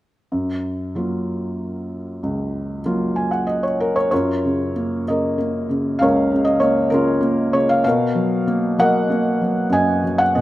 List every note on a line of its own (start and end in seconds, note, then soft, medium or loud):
0.32 2.19 F#2 soft
0.95 2.80 F#3 soft
0.95 2.80 A#3 soft
0.95 2.80 F4 soft
2.23 4.08 C#2 soft
2.85 4.08 F#3 soft
2.85 4.08 A#3 soft
2.85 4.08 F4 soft
3.16 3.30 G#5 medium
3.31 3.46 F#5 soft
3.47 3.62 D#5 medium
3.63 3.94 C#5 medium
3.80 3.96 A#4 medium
3.96 4.10 C#5 medium
4.11 5.96 F#2 medium
4.11 5.03 F4 soft
4.11 5.03 A#4 soft
4.11 4.71 C#5 medium
4.45 5.06 C#3 soft
4.76 5.37 A#3 soft
5.07 5.68 C#3 soft
5.07 5.97 A#4 medium
5.07 6.03 D#5 medium
5.38 6.57 A#3 soft
5.69 6.30 C#3 soft
5.99 7.81 C#2 medium
5.99 6.88 A#4 medium
5.99 6.58 C#5 medium
5.99 6.42 F5 medium
6.32 6.89 C#3 soft
6.45 6.59 D#5 medium
6.60 7.19 A#3 soft
6.60 6.88 C#5 medium
6.90 7.51 C#3 soft
6.90 7.82 C#4 medium
6.90 7.82 F4 medium
6.90 7.54 A#4 medium
7.21 7.82 A#3 medium
7.53 7.83 C#3 soft
7.53 7.69 C#5 medium
7.69 7.83 F5 medium
7.84 9.67 B2 medium
7.84 8.43 F5 medium
7.88 8.76 A#4 medium
8.15 8.77 F#3 soft
8.47 9.08 A#3 medium
8.78 9.40 F#3 soft
8.78 9.68 A#4 medium
8.78 9.68 D#5 medium
8.78 9.68 F#5 medium
9.10 10.32 A#3 medium
9.41 10.02 F#3 soft
9.70 10.41 F#2 soft
9.70 10.34 D#5 medium
9.70 10.21 G#5 medium
10.04 10.41 F#3 soft
10.18 10.35 F#5 medium
10.35 10.41 A#2 soft
10.35 10.41 D#5 medium